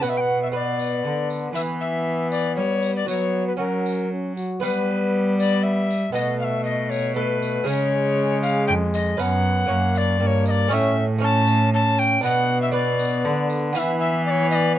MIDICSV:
0, 0, Header, 1, 6, 480
1, 0, Start_track
1, 0, Key_signature, 2, "minor"
1, 0, Tempo, 510204
1, 30, Time_signature, 3, 2, 24, 8
1, 5790, Tempo, 506329
1, 13974, End_track
2, 0, Start_track
2, 0, Title_t, "Recorder"
2, 0, Program_c, 0, 74
2, 28, Note_on_c, 0, 78, 85
2, 87, Note_on_c, 0, 76, 66
2, 101, Note_off_c, 0, 78, 0
2, 162, Note_on_c, 0, 79, 71
2, 177, Note_off_c, 0, 76, 0
2, 193, Note_on_c, 0, 78, 77
2, 203, Note_off_c, 0, 79, 0
2, 389, Note_off_c, 0, 78, 0
2, 404, Note_on_c, 0, 76, 72
2, 455, Note_off_c, 0, 76, 0
2, 514, Note_on_c, 0, 74, 77
2, 1213, Note_off_c, 0, 74, 0
2, 1457, Note_on_c, 0, 76, 87
2, 1514, Note_off_c, 0, 76, 0
2, 1700, Note_on_c, 0, 76, 80
2, 2169, Note_off_c, 0, 76, 0
2, 2176, Note_on_c, 0, 74, 79
2, 2402, Note_off_c, 0, 74, 0
2, 2408, Note_on_c, 0, 73, 76
2, 2767, Note_off_c, 0, 73, 0
2, 2785, Note_on_c, 0, 74, 76
2, 2901, Note_off_c, 0, 74, 0
2, 2906, Note_on_c, 0, 73, 74
2, 3260, Note_off_c, 0, 73, 0
2, 3271, Note_on_c, 0, 71, 60
2, 3324, Note_off_c, 0, 71, 0
2, 3376, Note_on_c, 0, 70, 59
2, 3857, Note_off_c, 0, 70, 0
2, 4350, Note_on_c, 0, 71, 88
2, 5032, Note_off_c, 0, 71, 0
2, 5069, Note_on_c, 0, 74, 99
2, 5300, Note_on_c, 0, 76, 97
2, 5314, Note_off_c, 0, 74, 0
2, 5769, Note_off_c, 0, 76, 0
2, 5774, Note_on_c, 0, 75, 89
2, 6013, Note_off_c, 0, 75, 0
2, 6019, Note_on_c, 0, 77, 77
2, 6063, Note_on_c, 0, 76, 84
2, 6073, Note_off_c, 0, 77, 0
2, 6252, Note_off_c, 0, 76, 0
2, 6258, Note_on_c, 0, 75, 87
2, 6497, Note_on_c, 0, 73, 98
2, 6511, Note_off_c, 0, 75, 0
2, 6733, Note_off_c, 0, 73, 0
2, 6739, Note_on_c, 0, 71, 91
2, 7225, Note_on_c, 0, 73, 91
2, 7239, Note_off_c, 0, 71, 0
2, 7931, Note_off_c, 0, 73, 0
2, 7936, Note_on_c, 0, 77, 106
2, 8174, Note_off_c, 0, 77, 0
2, 8180, Note_on_c, 0, 79, 107
2, 8237, Note_off_c, 0, 79, 0
2, 8434, Note_on_c, 0, 75, 94
2, 8676, Note_on_c, 0, 78, 108
2, 8691, Note_off_c, 0, 75, 0
2, 9413, Note_on_c, 0, 74, 111
2, 9428, Note_off_c, 0, 78, 0
2, 9649, Note_off_c, 0, 74, 0
2, 9649, Note_on_c, 0, 74, 86
2, 9688, Note_on_c, 0, 73, 93
2, 9698, Note_off_c, 0, 74, 0
2, 9881, Note_off_c, 0, 73, 0
2, 9886, Note_on_c, 0, 75, 99
2, 9917, Note_on_c, 0, 74, 107
2, 9927, Note_off_c, 0, 75, 0
2, 10131, Note_on_c, 0, 76, 114
2, 10145, Note_off_c, 0, 74, 0
2, 10432, Note_off_c, 0, 76, 0
2, 10609, Note_on_c, 0, 81, 114
2, 11047, Note_off_c, 0, 81, 0
2, 11084, Note_on_c, 0, 81, 113
2, 11322, Note_on_c, 0, 79, 112
2, 11336, Note_off_c, 0, 81, 0
2, 11552, Note_off_c, 0, 79, 0
2, 11557, Note_on_c, 0, 78, 121
2, 11905, Note_off_c, 0, 78, 0
2, 11920, Note_on_c, 0, 76, 93
2, 12021, Note_off_c, 0, 76, 0
2, 12027, Note_on_c, 0, 74, 100
2, 12732, Note_off_c, 0, 74, 0
2, 12992, Note_on_c, 0, 77, 97
2, 13024, Note_on_c, 0, 76, 106
2, 13034, Note_off_c, 0, 77, 0
2, 13213, Note_off_c, 0, 76, 0
2, 13223, Note_on_c, 0, 76, 100
2, 13460, Note_off_c, 0, 76, 0
2, 13472, Note_on_c, 0, 74, 93
2, 13516, Note_on_c, 0, 73, 102
2, 13525, Note_off_c, 0, 74, 0
2, 13698, Note_off_c, 0, 73, 0
2, 13704, Note_on_c, 0, 75, 91
2, 13749, Note_on_c, 0, 74, 99
2, 13758, Note_off_c, 0, 75, 0
2, 13941, Note_off_c, 0, 74, 0
2, 13974, End_track
3, 0, Start_track
3, 0, Title_t, "Lute"
3, 0, Program_c, 1, 24
3, 11, Note_on_c, 1, 59, 47
3, 19, Note_on_c, 1, 71, 49
3, 32, Note_on_c, 1, 47, 49
3, 477, Note_off_c, 1, 59, 0
3, 488, Note_off_c, 1, 71, 0
3, 488, Note_on_c, 1, 59, 48
3, 498, Note_on_c, 1, 71, 48
3, 949, Note_off_c, 1, 47, 0
3, 988, Note_on_c, 1, 50, 51
3, 1424, Note_off_c, 1, 59, 0
3, 1426, Note_off_c, 1, 50, 0
3, 1429, Note_off_c, 1, 71, 0
3, 1439, Note_on_c, 1, 59, 47
3, 1450, Note_on_c, 1, 71, 45
3, 1463, Note_on_c, 1, 52, 48
3, 2381, Note_off_c, 1, 52, 0
3, 2413, Note_on_c, 1, 55, 43
3, 2851, Note_off_c, 1, 59, 0
3, 2856, Note_off_c, 1, 71, 0
3, 2860, Note_off_c, 1, 55, 0
3, 2869, Note_on_c, 1, 59, 44
3, 2880, Note_on_c, 1, 66, 43
3, 2895, Note_on_c, 1, 54, 50
3, 3345, Note_off_c, 1, 54, 0
3, 3353, Note_off_c, 1, 59, 0
3, 3357, Note_on_c, 1, 61, 41
3, 3358, Note_off_c, 1, 66, 0
3, 3369, Note_on_c, 1, 66, 42
3, 3383, Note_on_c, 1, 54, 45
3, 4125, Note_off_c, 1, 54, 0
3, 4310, Note_off_c, 1, 61, 0
3, 4316, Note_off_c, 1, 66, 0
3, 4326, Note_on_c, 1, 59, 49
3, 4336, Note_on_c, 1, 71, 51
3, 4350, Note_on_c, 1, 55, 57
3, 5736, Note_off_c, 1, 59, 0
3, 5742, Note_off_c, 1, 71, 0
3, 5748, Note_off_c, 1, 55, 0
3, 5761, Note_on_c, 1, 59, 55
3, 5774, Note_on_c, 1, 69, 55
3, 5782, Note_on_c, 1, 47, 61
3, 6707, Note_off_c, 1, 59, 0
3, 6714, Note_off_c, 1, 69, 0
3, 6730, Note_on_c, 1, 59, 48
3, 6743, Note_on_c, 1, 69, 51
3, 7190, Note_off_c, 1, 47, 0
3, 7190, Note_off_c, 1, 59, 0
3, 7193, Note_on_c, 1, 61, 55
3, 7204, Note_on_c, 1, 68, 52
3, 7213, Note_off_c, 1, 69, 0
3, 7217, Note_on_c, 1, 49, 61
3, 8148, Note_off_c, 1, 49, 0
3, 8185, Note_on_c, 1, 41, 57
3, 8617, Note_off_c, 1, 61, 0
3, 8622, Note_off_c, 1, 68, 0
3, 8632, Note_off_c, 1, 41, 0
3, 8649, Note_on_c, 1, 61, 59
3, 8657, Note_on_c, 1, 71, 57
3, 8670, Note_on_c, 1, 42, 66
3, 9114, Note_off_c, 1, 42, 0
3, 9115, Note_off_c, 1, 61, 0
3, 9117, Note_on_c, 1, 58, 53
3, 9126, Note_on_c, 1, 61, 53
3, 9131, Note_off_c, 1, 71, 0
3, 9137, Note_on_c, 1, 73, 56
3, 9152, Note_on_c, 1, 42, 61
3, 9594, Note_off_c, 1, 42, 0
3, 9626, Note_on_c, 1, 43, 63
3, 10064, Note_off_c, 1, 58, 0
3, 10069, Note_off_c, 1, 61, 0
3, 10070, Note_off_c, 1, 43, 0
3, 10074, Note_off_c, 1, 73, 0
3, 10078, Note_on_c, 1, 57, 56
3, 10088, Note_on_c, 1, 61, 64
3, 10103, Note_on_c, 1, 73, 58
3, 10117, Note_on_c, 1, 45, 71
3, 10548, Note_off_c, 1, 57, 0
3, 10559, Note_on_c, 1, 57, 58
3, 10564, Note_off_c, 1, 61, 0
3, 10571, Note_off_c, 1, 73, 0
3, 10576, Note_on_c, 1, 61, 60
3, 10586, Note_on_c, 1, 73, 58
3, 11505, Note_off_c, 1, 57, 0
3, 11514, Note_off_c, 1, 61, 0
3, 11515, Note_off_c, 1, 45, 0
3, 11519, Note_off_c, 1, 73, 0
3, 11530, Note_on_c, 1, 62, 62
3, 11546, Note_on_c, 1, 71, 60
3, 11555, Note_on_c, 1, 47, 71
3, 11998, Note_off_c, 1, 62, 0
3, 12009, Note_on_c, 1, 62, 58
3, 12011, Note_off_c, 1, 71, 0
3, 12021, Note_on_c, 1, 71, 54
3, 12471, Note_off_c, 1, 47, 0
3, 12514, Note_on_c, 1, 50, 62
3, 12948, Note_off_c, 1, 62, 0
3, 12953, Note_off_c, 1, 50, 0
3, 12954, Note_off_c, 1, 71, 0
3, 12969, Note_on_c, 1, 59, 62
3, 12986, Note_on_c, 1, 71, 58
3, 12994, Note_on_c, 1, 52, 62
3, 13974, Note_off_c, 1, 52, 0
3, 13974, Note_off_c, 1, 59, 0
3, 13974, Note_off_c, 1, 71, 0
3, 13974, End_track
4, 0, Start_track
4, 0, Title_t, "Trombone"
4, 0, Program_c, 2, 57
4, 21, Note_on_c, 2, 59, 59
4, 497, Note_off_c, 2, 59, 0
4, 502, Note_on_c, 2, 59, 59
4, 1441, Note_off_c, 2, 59, 0
4, 1462, Note_on_c, 2, 59, 69
4, 2871, Note_off_c, 2, 59, 0
4, 2890, Note_on_c, 2, 59, 61
4, 3379, Note_on_c, 2, 61, 50
4, 3393, Note_off_c, 2, 59, 0
4, 3819, Note_off_c, 2, 61, 0
4, 3866, Note_on_c, 2, 61, 54
4, 4093, Note_off_c, 2, 61, 0
4, 4104, Note_on_c, 2, 66, 56
4, 4339, Note_off_c, 2, 66, 0
4, 4345, Note_on_c, 2, 59, 66
4, 5623, Note_off_c, 2, 59, 0
4, 5783, Note_on_c, 2, 57, 70
4, 6728, Note_off_c, 2, 57, 0
4, 6743, Note_on_c, 2, 57, 65
4, 7218, Note_off_c, 2, 57, 0
4, 7226, Note_on_c, 2, 56, 83
4, 8642, Note_off_c, 2, 56, 0
4, 8666, Note_on_c, 2, 59, 78
4, 9141, Note_off_c, 2, 59, 0
4, 9147, Note_on_c, 2, 58, 71
4, 9620, Note_off_c, 2, 58, 0
4, 9630, Note_on_c, 2, 58, 76
4, 10101, Note_off_c, 2, 58, 0
4, 10116, Note_on_c, 2, 61, 74
4, 10419, Note_off_c, 2, 61, 0
4, 10600, Note_on_c, 2, 61, 80
4, 11042, Note_off_c, 2, 61, 0
4, 11075, Note_on_c, 2, 61, 75
4, 11555, Note_on_c, 2, 59, 79
4, 11569, Note_off_c, 2, 61, 0
4, 12022, Note_off_c, 2, 59, 0
4, 12028, Note_on_c, 2, 59, 79
4, 12968, Note_off_c, 2, 59, 0
4, 12991, Note_on_c, 2, 59, 79
4, 13974, Note_off_c, 2, 59, 0
4, 13974, End_track
5, 0, Start_track
5, 0, Title_t, "Cello"
5, 0, Program_c, 3, 42
5, 42, Note_on_c, 3, 47, 62
5, 995, Note_on_c, 3, 50, 58
5, 1009, Note_off_c, 3, 47, 0
5, 1459, Note_off_c, 3, 50, 0
5, 1464, Note_on_c, 3, 52, 64
5, 2419, Note_on_c, 3, 55, 55
5, 2434, Note_off_c, 3, 52, 0
5, 2901, Note_off_c, 3, 55, 0
5, 2905, Note_on_c, 3, 54, 56
5, 3378, Note_off_c, 3, 54, 0
5, 3382, Note_on_c, 3, 54, 57
5, 4147, Note_off_c, 3, 54, 0
5, 4356, Note_on_c, 3, 55, 71
5, 5751, Note_off_c, 3, 55, 0
5, 5790, Note_on_c, 3, 47, 73
5, 7204, Note_off_c, 3, 47, 0
5, 7232, Note_on_c, 3, 49, 78
5, 8193, Note_on_c, 3, 41, 67
5, 8207, Note_off_c, 3, 49, 0
5, 8670, Note_off_c, 3, 41, 0
5, 8675, Note_on_c, 3, 42, 75
5, 9145, Note_off_c, 3, 42, 0
5, 9154, Note_on_c, 3, 42, 78
5, 9632, Note_on_c, 3, 43, 75
5, 9647, Note_off_c, 3, 42, 0
5, 10115, Note_on_c, 3, 45, 82
5, 10129, Note_off_c, 3, 43, 0
5, 11547, Note_off_c, 3, 45, 0
5, 11553, Note_on_c, 3, 47, 83
5, 12513, Note_on_c, 3, 50, 69
5, 12528, Note_off_c, 3, 47, 0
5, 12996, Note_on_c, 3, 52, 79
5, 13010, Note_off_c, 3, 50, 0
5, 13974, Note_off_c, 3, 52, 0
5, 13974, End_track
6, 0, Start_track
6, 0, Title_t, "Drums"
6, 27, Note_on_c, 9, 54, 72
6, 121, Note_off_c, 9, 54, 0
6, 745, Note_on_c, 9, 54, 49
6, 839, Note_off_c, 9, 54, 0
6, 1224, Note_on_c, 9, 54, 47
6, 1318, Note_off_c, 9, 54, 0
6, 1460, Note_on_c, 9, 54, 74
6, 1554, Note_off_c, 9, 54, 0
6, 2182, Note_on_c, 9, 54, 45
6, 2276, Note_off_c, 9, 54, 0
6, 2660, Note_on_c, 9, 54, 42
6, 2754, Note_off_c, 9, 54, 0
6, 2901, Note_on_c, 9, 54, 69
6, 2995, Note_off_c, 9, 54, 0
6, 3630, Note_on_c, 9, 54, 43
6, 3724, Note_off_c, 9, 54, 0
6, 4115, Note_on_c, 9, 54, 46
6, 4209, Note_off_c, 9, 54, 0
6, 4355, Note_on_c, 9, 54, 80
6, 4450, Note_off_c, 9, 54, 0
6, 5078, Note_on_c, 9, 54, 54
6, 5172, Note_off_c, 9, 54, 0
6, 5555, Note_on_c, 9, 54, 47
6, 5649, Note_off_c, 9, 54, 0
6, 5791, Note_on_c, 9, 54, 76
6, 5886, Note_off_c, 9, 54, 0
6, 6511, Note_on_c, 9, 54, 52
6, 6606, Note_off_c, 9, 54, 0
6, 6993, Note_on_c, 9, 54, 52
6, 7088, Note_off_c, 9, 54, 0
6, 7228, Note_on_c, 9, 54, 80
6, 7323, Note_off_c, 9, 54, 0
6, 7950, Note_on_c, 9, 54, 52
6, 8045, Note_off_c, 9, 54, 0
6, 8429, Note_on_c, 9, 54, 54
6, 8524, Note_off_c, 9, 54, 0
6, 8669, Note_on_c, 9, 54, 78
6, 8764, Note_off_c, 9, 54, 0
6, 9391, Note_on_c, 9, 54, 57
6, 9485, Note_off_c, 9, 54, 0
6, 9869, Note_on_c, 9, 54, 51
6, 9964, Note_off_c, 9, 54, 0
6, 10106, Note_on_c, 9, 54, 86
6, 10201, Note_off_c, 9, 54, 0
6, 10829, Note_on_c, 9, 54, 53
6, 10924, Note_off_c, 9, 54, 0
6, 11313, Note_on_c, 9, 54, 49
6, 11408, Note_off_c, 9, 54, 0
6, 11553, Note_on_c, 9, 54, 78
6, 11648, Note_off_c, 9, 54, 0
6, 12270, Note_on_c, 9, 54, 54
6, 12365, Note_off_c, 9, 54, 0
6, 12751, Note_on_c, 9, 54, 54
6, 12846, Note_off_c, 9, 54, 0
6, 12990, Note_on_c, 9, 54, 79
6, 13085, Note_off_c, 9, 54, 0
6, 13716, Note_on_c, 9, 54, 51
6, 13811, Note_off_c, 9, 54, 0
6, 13974, End_track
0, 0, End_of_file